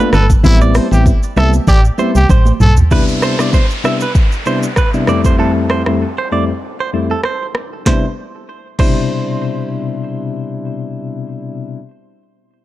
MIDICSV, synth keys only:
0, 0, Header, 1, 2, 480
1, 0, Start_track
1, 0, Key_signature, 0, "major"
1, 0, Tempo, 618557
1, 341, Time_signature, 4, 2, 24, 8
1, 9816, End_track
2, 0, Start_track
2, 0, Title_t, "Synth keys"
2, 0, Program_c, 0, 88
2, 0, Note_on_c, 0, 57, 78
2, 0, Note_on_c, 0, 59, 71
2, 0, Note_on_c, 0, 62, 76
2, 0, Note_on_c, 0, 65, 88
2, 126, Note_off_c, 0, 57, 0
2, 127, Note_off_c, 0, 59, 0
2, 128, Note_off_c, 0, 62, 0
2, 129, Note_off_c, 0, 65, 0
2, 337, Note_on_c, 0, 55, 99
2, 338, Note_on_c, 0, 59, 88
2, 340, Note_on_c, 0, 60, 88
2, 341, Note_on_c, 0, 64, 108
2, 679, Note_off_c, 0, 55, 0
2, 680, Note_off_c, 0, 59, 0
2, 681, Note_off_c, 0, 60, 0
2, 681, Note_off_c, 0, 64, 0
2, 710, Note_on_c, 0, 55, 85
2, 712, Note_on_c, 0, 59, 74
2, 714, Note_on_c, 0, 60, 73
2, 715, Note_on_c, 0, 64, 91
2, 848, Note_off_c, 0, 55, 0
2, 849, Note_off_c, 0, 59, 0
2, 849, Note_off_c, 0, 60, 0
2, 850, Note_off_c, 0, 64, 0
2, 1058, Note_on_c, 0, 55, 81
2, 1061, Note_on_c, 0, 59, 75
2, 1061, Note_on_c, 0, 60, 74
2, 1063, Note_on_c, 0, 64, 90
2, 1215, Note_off_c, 0, 55, 0
2, 1216, Note_off_c, 0, 59, 0
2, 1216, Note_off_c, 0, 60, 0
2, 1217, Note_off_c, 0, 64, 0
2, 1537, Note_on_c, 0, 55, 82
2, 1537, Note_on_c, 0, 59, 71
2, 1540, Note_on_c, 0, 60, 72
2, 1541, Note_on_c, 0, 64, 87
2, 1694, Note_off_c, 0, 55, 0
2, 1694, Note_off_c, 0, 59, 0
2, 1696, Note_off_c, 0, 60, 0
2, 1696, Note_off_c, 0, 64, 0
2, 2258, Note_on_c, 0, 48, 89
2, 2259, Note_on_c, 0, 55, 86
2, 2261, Note_on_c, 0, 59, 85
2, 2262, Note_on_c, 0, 62, 82
2, 2262, Note_on_c, 0, 64, 101
2, 2600, Note_off_c, 0, 48, 0
2, 2600, Note_off_c, 0, 55, 0
2, 2601, Note_off_c, 0, 59, 0
2, 2602, Note_off_c, 0, 62, 0
2, 2602, Note_off_c, 0, 64, 0
2, 2631, Note_on_c, 0, 48, 78
2, 2632, Note_on_c, 0, 55, 72
2, 2633, Note_on_c, 0, 59, 73
2, 2634, Note_on_c, 0, 62, 69
2, 2636, Note_on_c, 0, 64, 88
2, 2768, Note_off_c, 0, 48, 0
2, 2769, Note_off_c, 0, 55, 0
2, 2769, Note_off_c, 0, 59, 0
2, 2770, Note_off_c, 0, 62, 0
2, 2771, Note_off_c, 0, 64, 0
2, 2977, Note_on_c, 0, 48, 74
2, 2978, Note_on_c, 0, 55, 67
2, 2980, Note_on_c, 0, 59, 68
2, 2981, Note_on_c, 0, 62, 68
2, 2982, Note_on_c, 0, 64, 87
2, 3134, Note_off_c, 0, 48, 0
2, 3134, Note_off_c, 0, 55, 0
2, 3135, Note_off_c, 0, 59, 0
2, 3136, Note_off_c, 0, 62, 0
2, 3136, Note_off_c, 0, 64, 0
2, 3459, Note_on_c, 0, 48, 76
2, 3460, Note_on_c, 0, 55, 70
2, 3460, Note_on_c, 0, 59, 69
2, 3462, Note_on_c, 0, 62, 69
2, 3463, Note_on_c, 0, 64, 82
2, 3615, Note_off_c, 0, 48, 0
2, 3615, Note_off_c, 0, 59, 0
2, 3616, Note_off_c, 0, 55, 0
2, 3617, Note_off_c, 0, 62, 0
2, 3617, Note_off_c, 0, 64, 0
2, 3831, Note_on_c, 0, 55, 69
2, 3832, Note_on_c, 0, 48, 78
2, 3833, Note_on_c, 0, 59, 68
2, 3834, Note_on_c, 0, 62, 67
2, 3836, Note_on_c, 0, 64, 81
2, 3930, Note_off_c, 0, 55, 0
2, 3934, Note_off_c, 0, 64, 0
2, 3937, Note_on_c, 0, 41, 93
2, 3939, Note_on_c, 0, 55, 82
2, 3939, Note_on_c, 0, 57, 81
2, 3941, Note_on_c, 0, 60, 82
2, 3943, Note_on_c, 0, 64, 104
2, 3968, Note_off_c, 0, 48, 0
2, 3969, Note_off_c, 0, 59, 0
2, 3970, Note_off_c, 0, 62, 0
2, 4162, Note_off_c, 0, 41, 0
2, 4162, Note_off_c, 0, 55, 0
2, 4163, Note_off_c, 0, 57, 0
2, 4164, Note_off_c, 0, 60, 0
2, 4164, Note_off_c, 0, 64, 0
2, 4177, Note_on_c, 0, 41, 89
2, 4179, Note_on_c, 0, 55, 82
2, 4179, Note_on_c, 0, 57, 80
2, 4180, Note_on_c, 0, 60, 83
2, 4181, Note_on_c, 0, 64, 101
2, 4519, Note_off_c, 0, 41, 0
2, 4520, Note_off_c, 0, 55, 0
2, 4520, Note_off_c, 0, 57, 0
2, 4521, Note_off_c, 0, 60, 0
2, 4521, Note_off_c, 0, 64, 0
2, 4550, Note_on_c, 0, 41, 79
2, 4551, Note_on_c, 0, 55, 74
2, 4554, Note_on_c, 0, 57, 74
2, 4555, Note_on_c, 0, 60, 70
2, 4555, Note_on_c, 0, 64, 86
2, 4688, Note_off_c, 0, 41, 0
2, 4688, Note_off_c, 0, 55, 0
2, 4689, Note_off_c, 0, 57, 0
2, 4690, Note_off_c, 0, 60, 0
2, 4690, Note_off_c, 0, 64, 0
2, 4901, Note_on_c, 0, 41, 75
2, 4902, Note_on_c, 0, 55, 66
2, 4903, Note_on_c, 0, 57, 64
2, 4904, Note_on_c, 0, 60, 64
2, 4906, Note_on_c, 0, 64, 82
2, 5056, Note_off_c, 0, 41, 0
2, 5056, Note_off_c, 0, 55, 0
2, 5057, Note_off_c, 0, 57, 0
2, 5058, Note_off_c, 0, 60, 0
2, 5058, Note_off_c, 0, 64, 0
2, 5379, Note_on_c, 0, 41, 76
2, 5381, Note_on_c, 0, 55, 68
2, 5382, Note_on_c, 0, 57, 71
2, 5383, Note_on_c, 0, 60, 66
2, 5384, Note_on_c, 0, 64, 84
2, 5535, Note_off_c, 0, 41, 0
2, 5536, Note_off_c, 0, 55, 0
2, 5536, Note_off_c, 0, 57, 0
2, 5537, Note_off_c, 0, 60, 0
2, 5537, Note_off_c, 0, 64, 0
2, 6099, Note_on_c, 0, 48, 81
2, 6101, Note_on_c, 0, 55, 77
2, 6103, Note_on_c, 0, 59, 73
2, 6104, Note_on_c, 0, 62, 73
2, 6106, Note_on_c, 0, 64, 93
2, 6243, Note_off_c, 0, 48, 0
2, 6244, Note_off_c, 0, 55, 0
2, 6245, Note_off_c, 0, 59, 0
2, 6245, Note_off_c, 0, 62, 0
2, 6246, Note_off_c, 0, 64, 0
2, 6818, Note_on_c, 0, 48, 80
2, 6820, Note_on_c, 0, 55, 72
2, 6821, Note_on_c, 0, 47, 76
2, 6824, Note_on_c, 0, 62, 76
2, 6824, Note_on_c, 0, 64, 94
2, 9152, Note_off_c, 0, 48, 0
2, 9153, Note_off_c, 0, 55, 0
2, 9154, Note_off_c, 0, 47, 0
2, 9155, Note_off_c, 0, 62, 0
2, 9155, Note_off_c, 0, 64, 0
2, 9816, End_track
0, 0, End_of_file